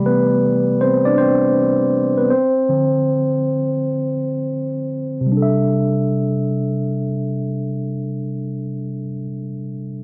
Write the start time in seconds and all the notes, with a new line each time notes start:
Already playing: C3 E3 G3 A3 G4 D5 B5
0.06 B3 B4
0.81 C4 C5
1.05 D4 D5
1.18 C4 C5
2.17 B3 B4
2.30 C4 C5
2.69 D3 F3 C4
5.21 C3
5.26 G3
5.32 D4
5.37 A4
5.42 E5